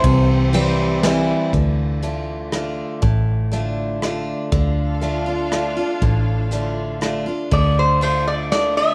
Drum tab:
RD |x-x-x-|------|------|------|
HH |------|x-x-x-|x-x-x-|x-x-x-|
SD |----o-|----r-|----r-|----r-|
BD |o-----|o-----|o-----|o-----|

RD |------|x-x-xx|
HH |x-x-x-|------|
SD |----r-|----o-|
BD |o-----|o-----|